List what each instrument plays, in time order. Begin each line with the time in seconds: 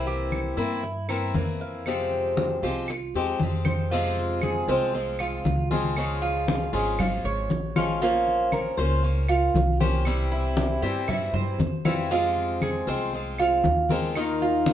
Already playing: upright bass C2, steel-string acoustic guitar C3 E3 A#3 C4 E4
0.06 cuban tres G4, high conga
0.32 high conga, claves
0.57 upright bass G2, steel-string acoustic guitar E3 A#3 C4 E4, cuban tres E4, high conga
0.83 muted steel-string acoustic guitar stroke, high conga
1.09 steel-string acoustic guitar E3 A#3 C4 E4, cuban tres A#4, high conga, claves
1.34 upright bass F2, steel-string acoustic guitar E3 A#3 C4 E4, high conga
1.61 cuban tres F5
1.86 steel-string acoustic guitar C3 F3 G#3 C4 G4, high conga, claves
2.11 high conga
2.37 high conga
2.62 upright bass C2, steel-string acoustic guitar F3 G#3 C4 G4, cuban tres F4, high conga
2.88 muted steel-string acoustic guitar stroke, high conga, claves
3.14 upright bass E2, steel-string acoustic guitar F3 G#3 C4 G4, high conga
3.39 upright bass F2, steel-string acoustic guitar G#3 C4 G4, high conga
3.65 cuban tres C5, high conga, claves
3.91 steel-string acoustic guitar C3 F3 G#3 C4 F4, cuban tres F4, high conga
4.16 high conga
4.42 cuban tres G#4, high conga, claves
4.68 upright bass C2, steel-string acoustic guitar F3 G#3 C4 F4, cuban tres C5, high conga
4.94 steel-string acoustic guitar F3 G#3 C4 F4, high conga
5.19 cuban tres F4, high conga, claves
5.45 upright bass C#2, muted steel-string acoustic guitar stroke, high conga
5.71 steel-string acoustic guitar F3 G#3 C4 F4, cuban tres G#4, high conga
5.97 steel-string acoustic guitar C#3 F3 G#3 C#4 F4, high conga, claves
6.22 cuban tres F4, high conga
6.48 high conga
6.73 upright bass G#1, steel-string acoustic guitar F3 G#3 C#4 F4, cuban tres G#4, high conga
6.98 steel-string acoustic guitar F3 G#3 C#4 F4, cuban tres F5, high conga, low conga, claves
7.24 upright bass G#1, cuban tres C#5, high conga
7.50 upright bass A#1, muted steel-string acoustic guitar stroke, high conga
7.76 steel-string acoustic guitar F3 G#3 C#4 F4, cuban tres F5, high conga, claves
8.01 steel-string acoustic guitar F3 A#3 C#4 F4 C5, cuban tres F4, high conga
8.27 high conga
8.52 cuban tres A#4, high conga, claves
8.77 upright bass C#2, steel-string acoustic guitar A#3 C#4 F4 C5, cuban tres C5, high conga
9.03 steel-string acoustic guitar A#3 C#4 F4 C5, high conga
9.29 cuban tres F4, high conga, claves
9.54 upright bass C2, muted steel-string acoustic guitar stroke, high conga
9.80 steel-string acoustic guitar A#3 C#4 F4 C5, cuban tres G4, high conga
10.05 steel-string acoustic guitar C3 E3 G3 C4 E4, high conga, claves
10.32 cuban tres E4, high conga
10.57 high conga
10.82 upright bass G2, steel-string acoustic guitar E3 G3 C4 E4, cuban tres G4, high conga
11.08 steel-string acoustic guitar E3 G3 C4 E4, cuban tres E5, high conga, low conga, claves
11.33 upright bass G2, cuban tres C5, high conga, low conga
11.58 upright bass F2, muted steel-string acoustic guitar stroke, high conga
11.85 steel-string acoustic guitar E3 G3 C4 E4, cuban tres F5, high conga, claves
12.10 steel-string acoustic guitar C3 F3 G#3 C4 F4, cuban tres F4, high conga
12.37 high conga
12.62 cuban tres G#4, high conga, claves
12.87 upright bass C2, steel-string acoustic guitar F3 G#3 C4 F4, cuban tres C5, high conga
13.13 steel-string acoustic guitar F3 G#3 C4 F4, high conga
13.38 cuban tres F4, high conga, claves
13.64 upright bass D#2, muted steel-string acoustic guitar stroke, high conga
13.89 steel-string acoustic guitar F3 G#3 C4 F4, cuban tres A#4, high conga
14.15 steel-string acoustic guitar D#3 A#3 D#4 F4 A#4, high conga, claves
14.41 cuban tres F4, high conga
14.66 high conga